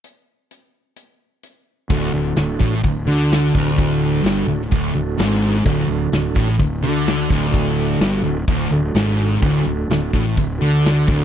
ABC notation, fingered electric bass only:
X:1
M:4/4
L:1/8
Q:1/4=128
K:D
V:1 name="Fingered electric bass" clef=bass
z8 | D,,, D,,, D,,, A,,, D,,, D,,2 D,,,- | D,,,2 G,,, D,,, D,,, D,,, ^G,,,2 | D,,, D,,, D,,, A,,, D,,, D,,2 D,,,- |
D,,,2 G,,, D,,, D,,, D,,, ^G,,,2 | D,,, D,,, D,,, A,,, D,,, D,,2 D,,, |]